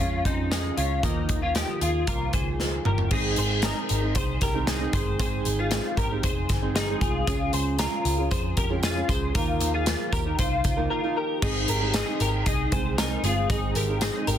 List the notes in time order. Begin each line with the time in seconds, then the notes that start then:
0.00 F2 C#3 G#3 C#4 F4
0.25 F2 C4 D#4, kick, closed hi-hat
0.51 G#3 D#4, snare, closed hi-hat
0.77 C#2 G#3 C#4 F4, closed hi-hat
1.02 D#2 D#3 F3 A#3 D#4 F4, kick, closed hi-hat
1.29 D#2, kick, closed hi-hat
1.42 C#4 F4
1.55 D#4 G4, snare, closed hi-hat
1.81 D#2 F4 G#4, closed hi-hat
2.07 C2 D#3 F3 A#3 F4 A#4, kick, closed hi-hat
2.33 C#2 G#4 C5, kick, closed hi-hat
2.60 snare
2.84 G1 F3 A#3 F4 G4 A#4, mid tom
2.98 floor tom
3.11 G#1 G#2 D#3 G#3 C4 D#4 G#4, kick, crash
3.36 G#1 G#4 C5, closed hi-hat
3.62 G#3 C4 D#4 G#4 A#4, snare, closed hi-hat
3.89 G#1, closed hi-hat
4.02 G#3 C4 D#4 G#4
4.15 C2 G#4 C5, kick, closed hi-hat
4.41 C2 G4 A#4, kick, snare, closed hi-hat
4.54 G#2 D#3 G#3 C4 D#4 G#4
4.67 D#4 G#4, snare, closed hi-hat
4.80 G#2 D#3 G#3 C4 D#4 G#4
4.93 G1 G#4 C5, kick, closed hi-hat
5.19 G#1 G#2 D#3 G#3 C4 D#4 G#4 C5, kick, closed hi-hat
5.45 G#1, closed hi-hat
5.59 F4 G#4
5.71 G#3 C4 D#4 G#4, snare, closed hi-hat
5.97 G#1 G4 A#4, kick, closed hi-hat
6.11 G#3 C4 D#4 G#4
6.23 F1 G#4 C5, kick, closed hi-hat
6.49 G1, kick, snare, closed hi-hat
6.62 G#2 D#3 G#3 C4 D#4 G#4
6.75 D#4 G#4, snare, closed hi-hat
6.89 G#2 D#3 G#3 C4 D#4 G#4
7.01 C2 F4 G#4, kick, closed hi-hat
7.27 C#2 C#3 G#3 C#4 F4 G#4, kick, closed hi-hat, tambourine
7.53 C#2 G#4 C5, closed hi-hat, tambourine
7.78 G#3 C#4 F4 G#4 A#4, snare, closed hi-hat, tambourine
8.05 C#2, closed hi-hat, tambourine
8.18 C#4 F4 G#4
8.31 F2 G#4 C5, kick, closed hi-hat, tambourine
8.57 F2 G4 A#4, kick, closed hi-hat, tambourine
8.70 C#3 G#3 C#4 F4 G#4
8.83 F4 G#4, snare, closed hi-hat, tambourine
8.95 C#3 G#3 C#4 F4 G#4
9.09 C#2 G#4 C5, kick, closed hi-hat, tambourine
9.35 D#2 D#3 F3 A#3 D#4 F4 A#4, kick, closed hi-hat, tambourine
9.60 D#2, closed hi-hat, tambourine
9.74 F4 G#4
9.86 F3 A#3 D#4 A#4, snare, closed hi-hat, tambourine
10.13 D#2 G4 A#4, kick, closed hi-hat, tambourine
10.26 A#3 D#4 A#4
10.39 C2 F4 C5, kick, closed hi-hat
10.64 C#2, kick, closed hi-hat, tambourine
10.77 D#3 F3 A#3 D#4 A#4
10.90 F4 A#4
11.03 D#3 F3 A#3 D#4 A#4
11.17 G4 A#4
11.42 G#1 G#2 D#3 G#3 C4 D#4 G#4, kick, crash, tambourine
11.68 G#1 G4 A#4, closed hi-hat, tambourine
11.81 G#3 C4 D#4 G#4
11.94 D#4 G#4, snare, closed hi-hat, tambourine
12.07 G#3 C4 D#4 G#4
12.20 G#1 G4 A#4, closed hi-hat, tambourine
12.46 C2 D#4 G#4, kick, closed hi-hat, tambourine
12.72 C2 G#3 C4 D#4 G#4 C5, kick, closed hi-hat
12.98 G#3 C4 D#4 G#4 A#4, snare, closed hi-hat, tambourine
13.23 G1 G#3 C4 D#4 F4 G#4, closed hi-hat, tambourine
13.50 G#1 G#2 D#3 G#3 C4 D#4 G#4, kick, closed hi-hat, tambourine
13.75 G#1 G4 A#4, closed hi-hat, tambourine
13.89 G#3 C4 D#4 G#4
14.01 D#4 G#4, snare, closed hi-hat, tambourine
14.15 G#3 C4 D#4 G#4
14.27 G#1 G4 A#4, closed hi-hat, tambourine